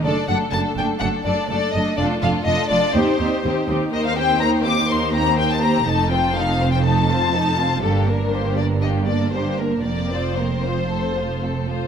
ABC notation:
X:1
M:4/4
L:1/16
Q:1/4=122
K:Dphr
V:1 name="Violin section"
d2 ^f2 a2 g2 f2 d2 d2 e2 | d2 f2 e2 d2 c6 z2 | [K:Fmix] e f g2 b2 d'2 c'2 b2 g a b2 | a2 g2 f3 g a8 |
A2 B2 c2 d2 e2 d2 c2 B2 | d4 c8- c2 z2 |]
V:2 name="Violin section"
A2 A2 A2 A2 A2 A2 A2 A2 | [FA]2 [FA]2 [FA]2 [FA]2 G2 G2 G2 G2 | [K:Fmix] [Bc]2 [Gc]2 [Bc]2 [Gc]2 [Bc]2 [Gc]2 [Bc]2 [Gc]2 | [EA]2 [Fc]2 [EA]2 [Fc]2 [EA]2 [Fc]2 [EA]2 [Fc]2 |
[B,G]2 [DB]2 [B,G]2 [DB]2 [B,G]2 [DB]2 [B,G]2 [DB]2 | [CB]2 [Fc]2 [CB]2 [Fc]2 A2 [Fc]2 A2 [Fc]2 |]
V:3 name="Viola section"
[A,D]2 [A,D]2 [A,D]2 [A,D]2 [A,D]2 [A,D]2 [A,D]2 [A,D]2 | [A,D]2 [A,D]2 [A,D]2 [A,D]2 [CE]2 [CE]2 [CE]2 [CE]2 | [K:Fmix] [B,E]2 [B,C]2 [B,E]2 [B,C]2 [B,E]2 [B,C]2 [B,E]2 [B,C]2 | [A,E]2 [CF]2 [A,E]2 [CF]2 [A,E]2 [CF]2 [A,E]2 [CF]2 |
[G,D]2 B,2 [G,D]2 B,2 [G,D]2 B,2 [G,D]2 B,2 | B,2 [F,C]2 B,2 [F,C]2 [A,C]2 [F,A,]2 [A,C]2 [F,A,]2 |]
V:4 name="Cello section" clef=bass
^F,,2 F,,2 F,,2 F,,2 F,,2 F,,2 F,,2 F,,2 | F,,2 F,,2 F,,2 F,,2 E,,2 E,,2 E,,2 E,,2 | [K:Fmix] E,,16 | F,,16 |
G,,16 | F,,12- F,,2 z2 |]
V:5 name="Double bass section" clef=bass
^F,,,2 F,,,2 F,,,2 F,,,2 F,,,2 F,,,2 F,,,2 F,,,2 | F,,,2 F,,,2 F,,,2 F,,,2 E,,2 E,,2 E,,2 E,,2 | [K:Fmix] E,,16 | F,,,16 |
G,,,16 | F,,,12- F,,,2 z2 |]